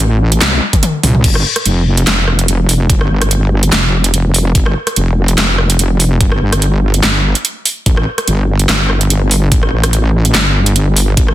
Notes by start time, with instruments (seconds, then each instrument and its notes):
Already playing: wobble bass A1
0.32 closed hi-hat
0.41 wobble bass C2, snare, clap, closed hi-hat, high tom
0.53 high tom
0.73 kick, closed hi-hat, mid tom
0.83 closed hi-hat, mid tom
1.03 wobble bass C2, mid tom, open hi-hat
1.15 mid tom
1.24 wobble bass G1, kick, closed hi-hat, crash
1.35 cross-stick
1.56 cross-stick, closed hi-hat
1.66 wobble bass F1, closed hi-hat
1.97 closed hi-hat
2.07 wobble bass F1, cross-stick, snare, clap, closed hi-hat
2.28 cross-stick
2.39 closed hi-hat
2.48 closed hi-hat
2.69 open hi-hat
2.90 wobble bass G1, kick, closed hi-hat
3.01 cross-stick
3.10 wobble bass G1
3.22 cross-stick, closed hi-hat
3.31 closed hi-hat
3.63 closed hi-hat
3.72 wobble bass F1, snare, clap, closed hi-hat
4.04 closed hi-hat
4.14 closed hi-hat
4.34 open hi-hat
4.55 wobble bass G1, kick, closed hi-hat
4.66 cross-stick
4.87 cross-stick, closed hi-hat
4.96 wobble bass F1, closed hi-hat
5.28 closed hi-hat
5.38 wobble bass F1, cross-stick, snare, clap, closed hi-hat
5.59 cross-stick
5.70 closed hi-hat
5.79 closed hi-hat
6.00 open hi-hat
6.21 wobble bass G1, kick, closed hi-hat
6.32 cross-stick
6.41 wobble bass G1
6.53 cross-stick, closed hi-hat
6.62 closed hi-hat
6.94 closed hi-hat
7.03 wobble bass G1, snare, clap, closed hi-hat
7.35 closed hi-hat
7.45 closed hi-hat
7.65 open hi-hat
7.86 wobble bass A1, kick, closed hi-hat
7.97 cross-stick
8.18 cross-stick, closed hi-hat
8.28 wobble bass G1, closed hi-hat
8.59 closed hi-hat
8.69 wobble bass G1, cross-stick, snare, clap, closed hi-hat
8.90 cross-stick
9.01 closed hi-hat
9.10 closed hi-hat
9.31 open hi-hat
9.52 wobble bass A1, kick, closed hi-hat
9.63 cross-stick
9.72 wobble bass A1
9.84 cross-stick, closed hi-hat
9.93 closed hi-hat
10.25 closed hi-hat
10.35 wobble bass G1, snare, clap, closed hi-hat
10.66 closed hi-hat
10.76 closed hi-hat
10.96 open hi-hat
11.17 wobble bass A1, kick, closed hi-hat
11.28 cross-stick